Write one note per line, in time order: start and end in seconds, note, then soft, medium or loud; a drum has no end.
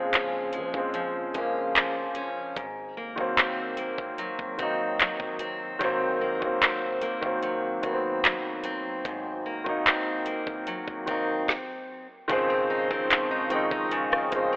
0.00 0.56 A#1 loud
0.00 2.56 A#2 medium
0.00 0.72 C#3 loud
0.00 0.74 F3 medium
0.00 0.53 G#3 medium
0.00 0.76 G#3 medium
0.00 0.77 C4 loud
0.13 1.34 C#4 medium
0.13 clap loud
0.13 closed hi-hat medium
0.53 0.73 F3 medium
0.53 2.97 G#3 medium
0.53 closed hi-hat medium
0.72 1.33 A#1 medium
0.72 1.26 C#3 medium
0.72 1.27 F3 medium
0.72 1.28 G#3 medium
0.72 kick medium
0.77 1.28 C4 medium
0.94 1.74 F3 medium
0.94 closed hi-hat medium
1.33 2.53 A#1 loud
1.33 2.56 C#3 medium
1.33 2.56 F3 medium
1.33 2.57 G#3 medium
1.33 2.15 C#4 medium
1.33 kick medium
1.33 closed hi-hat medium
1.38 2.58 A#3 medium
1.76 2.65 F3 medium
1.76 clap loud
1.76 closed hi-hat medium
2.15 2.65 C#4 medium
2.15 closed hi-hat medium
2.56 3.15 G#1 loud
2.56 5.80 G#2 medium
2.56 kick loud
2.56 closed hi-hat medium
2.97 3.77 A#3 medium
3.16 3.57 G#1 loud
3.16 4.40 D#3 medium
3.16 4.41 F#3 medium
3.16 4.41 A#3 medium
3.16 kick medium
3.21 4.42 C4 medium
3.38 4.59 C4 medium
3.38 clap loud
3.38 closed hi-hat medium
3.77 6.20 A#3 medium
3.77 closed hi-hat medium
3.98 4.37 G#1 medium
3.98 kick medium
4.18 4.99 F#3 medium
4.18 closed hi-hat medium
4.39 5.17 G#1 loud
4.39 kick medium
4.58 5.64 D#3 medium
4.58 5.65 F#3 medium
4.58 5.66 A#3 medium
4.58 5.40 C4 medium
4.58 kick medium
4.58 closed hi-hat medium
4.62 5.67 D#4 medium
5.00 7.42 F#3 medium
5.00 clap loud
5.00 closed hi-hat medium
5.20 5.78 G#1 medium
5.20 kick medium
5.39 6.61 C4 medium
5.39 closed hi-hat medium
5.79 6.39 G#1 loud
5.79 9.04 G#2 medium
5.79 6.33 D#3 loud
5.79 6.34 F#3 loud
5.79 6.34 A#3 medium
5.79 kick loud
5.79 closed hi-hat medium
5.84 6.35 C4 loud
6.21 7.01 A#3 medium
6.40 6.81 G#1 loud
6.40 7.11 D#3 medium
6.40 7.12 F#3 medium
6.40 7.13 A#3 medium
6.40 kick medium
6.45 7.14 C4 medium
6.62 7.83 C4 medium
6.62 clap loud
6.62 closed hi-hat medium
7.01 9.45 A#3 medium
7.01 closed hi-hat medium
7.21 7.81 G#1 loud
7.21 7.75 D#3 medium
7.21 7.76 F#3 medium
7.21 7.76 A#3 medium
7.21 kick medium
7.26 7.77 C4 medium
7.43 8.23 F#3 medium
7.43 closed hi-hat medium
7.82 8.61 G#1 loud
7.82 9.24 D#3 medium
7.82 9.24 F#3 medium
7.82 9.25 A#3 medium
7.82 8.64 C4 medium
7.82 kick medium
7.82 closed hi-hat medium
7.87 7.92 B3 medium
7.93 9.29 C4 medium
8.24 10.66 F#3 medium
8.24 clap loud
8.24 closed hi-hat medium
8.64 9.86 C4 medium
8.64 closed hi-hat medium
9.05 9.64 G#1 loud
9.05 11.56 G#2 medium
9.05 kick loud
9.05 closed hi-hat medium
9.46 10.25 A#3 medium
9.64 10.44 G#1 loud
9.64 10.88 D#3 medium
9.64 10.89 F#3 medium
9.64 10.90 A#3 medium
9.64 kick medium
9.69 10.91 D#4 medium
9.86 11.08 C4 medium
9.86 clap loud
9.86 closed hi-hat medium
10.26 11.56 A#3 medium
10.26 closed hi-hat medium
10.47 10.86 G#1 medium
10.47 kick medium
10.67 11.57 F#3 medium
10.67 closed hi-hat medium
10.88 11.46 G#1 medium
10.88 kick medium
11.06 11.48 D#3 medium
11.06 11.48 F#3 medium
11.06 11.49 A#3 medium
11.06 12.07 C4 medium
11.06 kick medium
11.06 closed hi-hat medium
11.11 11.50 D#4 medium
11.48 kick loud
11.48 snare medium
12.28 12.88 C#2 loud
12.28 13.91 C#3 medium
12.28 13.34 D#3 loud
12.28 13.35 F3 loud
12.28 13.36 G#3 loud
12.28 14.56 C4 medium
12.28 14.56 D#5 medium
12.28 14.56 F5 medium
12.28 14.56 C#6 medium
12.28 kick loud
12.28 closed hi-hat medium
12.33 13.37 C4 loud
12.50 12.89 C4 medium
12.70 13.30 D#4 medium
12.90 13.68 C#2 loud
12.90 13.50 C4 medium
12.90 kick medium
13.11 14.56 F3 medium
13.11 clap loud
13.11 closed hi-hat medium
13.31 13.70 D#4 medium
13.50 14.21 D#3 medium
13.50 14.22 F3 medium
13.50 14.22 G#3 medium
13.50 14.11 C4 medium
13.50 closed hi-hat medium
13.54 14.23 D#4 medium
13.71 14.30 C#2 loud
13.71 14.31 D#4 medium
13.71 kick loud
13.91 14.56 C#3 medium
13.91 closed hi-hat medium
14.12 14.51 C4 medium
14.12 cross-stick medium
14.31 14.56 G1 loud
14.31 14.56 D#3 medium
14.31 14.56 F3 medium
14.31 14.56 G#3 medium
14.31 14.56 D#4 medium
14.31 kick medium
14.31 closed hi-hat medium
14.36 14.56 C4 medium
14.53 14.56 C4 medium